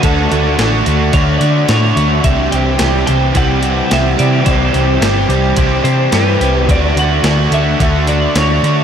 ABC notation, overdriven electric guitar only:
X:1
M:4/4
L:1/8
Q:1/4=108
K:D
V:1 name="Overdriven electric guitar"
[D,A,DF] [A,DF] [D,A,DF] [A,DF] [D,A,DF] [A,DF] [D,A,DF] [A,DF] | [=C,E,G,=CG] [G,CG] [E,G,CG] [G,CG] [C,E,G,CG] [G,CG] [E,G,CG] [G,CG] | [=C,E,G,=CG] [G,CG] [E,G,CG] [G,CG] [C,E,G,CG] [G,CG] [E,G,CG] [G,CG] | [D,A,DF] [A,DF] [D,A,DF] [A,DF] [D,A,DF] [A,DF] [D,A,DF] [A,DF] |]